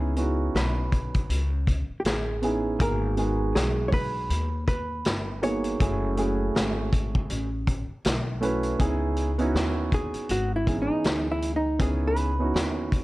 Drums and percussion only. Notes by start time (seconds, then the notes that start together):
0.16 closed hi-hat
0.56 snare, closed hi-hat
0.92 kick, closed hi-hat
1.14 kick, closed hi-hat
1.30 closed hi-hat
1.67 kick, closed hi-hat
2.05 snare, closed hi-hat
2.42 closed hi-hat
2.80 kick, closed hi-hat
3.17 closed hi-hat
3.56 snare, closed hi-hat
3.92 kick, open hi-hat
4.30 closed hi-hat
4.68 kick, closed hi-hat
5.05 snare, closed hi-hat
5.43 closed hi-hat
5.64 closed hi-hat
5.80 kick, closed hi-hat
6.17 closed hi-hat
6.56 snare, closed hi-hat
6.93 kick, closed hi-hat
7.15 kick
7.30 closed hi-hat
7.67 kick, closed hi-hat
8.05 snare, closed hi-hat
8.42 closed hi-hat
8.63 closed hi-hat
8.80 kick, closed hi-hat
9.16 closed hi-hat
9.39 closed hi-hat
9.56 snare, closed hi-hat
9.92 kick, closed hi-hat
10.14 closed hi-hat
10.29 closed hi-hat
10.67 kick, closed hi-hat
11.04 snare, closed hi-hat
11.42 closed hi-hat
11.80 kick, closed hi-hat
12.16 closed hi-hat
12.56 snare, closed hi-hat
12.92 kick, closed hi-hat